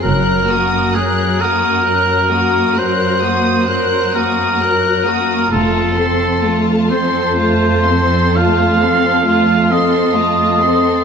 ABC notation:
X:1
M:12/8
L:1/8
Q:3/8=44
K:Fphr
V:1 name="Violin section"
g' e' g' e' g' e' g' e' g' e' g' e' | =a c' a c' a c' a c' a c' a c' |]
V:2 name="Oboe"
B2 A B3 c3 B3 | =A2 z c3 f3 e3 |]
V:3 name="Violin section"
B G B G B G B G B G B G | F =A F A F A F A F A F A |]
V:4 name="Viola section"
G, B, G, B, G, B, G, B, G, B, G, B, | =A, C A, C A, C A, C A, C A, C |]
V:5 name="Cello section" clef=bass
G,,12 | F,,12 |]
V:6 name="Double bass section" clef=bass
G,,,2 z8 z2 | F,,,2 z8 z2 |]